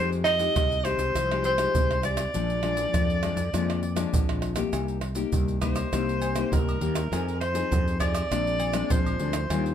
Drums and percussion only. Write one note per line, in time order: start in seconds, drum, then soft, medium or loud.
0.12 pandeiro soft
0.12 maracas soft
0.25 pandeiro medium
0.25 tamborim medium
0.25 maracas medium
0.39 pandeiro medium
0.39 maracas medium
0.56 pandeiro medium
0.56 tamborim medium
0.56 maracas medium
0.56 surdo loud
0.72 pandeiro soft
0.72 maracas soft
0.85 pandeiro medium
0.85 tamborim medium
0.85 maracas medium
0.99 pandeiro medium
0.99 maracas medium
1.16 pandeiro medium
1.16 tamborim medium
1.16 maracas medium
1.16 surdo medium
1.31 pandeiro soft
1.31 tamborim medium
1.31 maracas soft
1.44 pandeiro medium
1.44 maracas medium
1.58 pandeiro medium
1.58 tamborim medium
1.58 maracas medium
1.75 pandeiro medium
1.75 maracas medium
1.75 surdo loud
1.91 pandeiro soft
1.91 tamborim medium
1.91 maracas soft
2.03 pandeiro medium
2.03 tamborim medium
2.03 maracas medium
2.17 pandeiro medium
2.17 tamborim medium
2.17 maracas medium
2.34 pandeiro medium
2.34 maracas medium
2.34 surdo medium
2.50 pandeiro soft
2.50 maracas soft
2.63 pandeiro medium
2.63 tamborim medium
2.77 pandeiro medium
2.77 maracas medium
2.94 pandeiro medium
2.94 tamborim medium
2.94 maracas medium
2.94 surdo loud
3.10 pandeiro soft
3.10 maracas soft
3.23 pandeiro medium
3.23 tamborim medium
3.23 maracas medium
3.37 pandeiro medium
3.37 maracas medium
3.54 pandeiro medium
3.54 tamborim medium
3.54 maracas medium
3.54 surdo medium
3.70 pandeiro soft
3.70 tamborim medium
3.70 maracas soft
3.83 pandeiro medium
3.96 pandeiro medium
3.96 tamborim medium
3.96 maracas medium
4.14 pandeiro medium
4.14 maracas medium
4.14 surdo loud
4.29 pandeiro soft
4.29 tamborim medium
4.29 maracas soft
4.42 pandeiro medium
4.42 tamborim medium
4.56 pandeiro medium
4.56 tamborim medium
4.56 maracas medium
4.73 pandeiro medium
4.73 tamborim medium
4.73 low agogo medium
4.73 maracas medium
4.73 surdo medium
4.88 pandeiro soft
4.88 maracas soft
5.01 pandeiro medium
5.01 tamborim medium
5.15 pandeiro medium
5.15 maracas medium
5.32 pandeiro medium
5.32 maracas medium
5.32 surdo medium
5.48 pandeiro soft
5.48 maracas soft
5.62 pandeiro medium
5.62 tamborim medium
5.62 high agogo medium
5.62 maracas medium
5.62 surdo medium
5.76 pandeiro medium
5.76 tamborim medium
5.76 high agogo medium
5.76 maracas medium
5.93 pandeiro medium
5.93 tamborim medium
5.93 maracas medium
5.93 surdo medium
6.09 pandeiro soft
6.09 maracas soft
6.22 pandeiro medium
6.22 low agogo medium
6.22 maracas medium
6.36 pandeiro medium
6.36 tamborim medium
6.36 maracas medium
6.53 pandeiro medium
6.53 maracas medium
6.53 surdo loud
6.69 pandeiro soft
6.69 high agogo medium
6.69 maracas soft
6.81 pandeiro medium
6.95 pandeiro medium
6.95 tamborim medium
6.95 maracas medium
7.13 pandeiro medium
7.13 tamborim medium
7.13 low agogo medium
7.13 maracas medium
7.13 surdo medium
7.28 pandeiro soft
7.28 maracas soft
7.41 pandeiro medium
7.41 tamborim medium
7.55 pandeiro medium
7.55 maracas medium
7.72 pandeiro medium
7.72 maracas medium
7.72 surdo loud
7.88 pandeiro soft
7.88 maracas soft
8.00 pandeiro medium
8.00 tamborim medium
8.00 high agogo medium
8.00 maracas medium
8.00 surdo medium
8.15 pandeiro medium
8.15 tamborim medium
8.15 high agogo medium
8.15 maracas medium
8.32 pandeiro medium
8.32 tamborim medium
8.32 maracas medium
8.32 surdo medium
8.47 pandeiro soft
8.47 maracas soft
8.60 pandeiro medium
8.60 low agogo medium
8.60 maracas medium
8.73 pandeiro medium
8.73 tamborim medium
8.73 maracas medium
8.90 pandeiro medium
8.90 maracas medium
8.90 surdo loud
9.06 pandeiro soft
9.06 high agogo medium
9.06 maracas soft
9.19 pandeiro medium
9.33 pandeiro medium
9.33 tamborim medium
9.33 maracas medium
9.50 pandeiro medium
9.50 tamborim medium
9.50 low agogo medium
9.50 maracas medium
9.50 surdo medium
9.66 pandeiro soft
9.66 maracas soft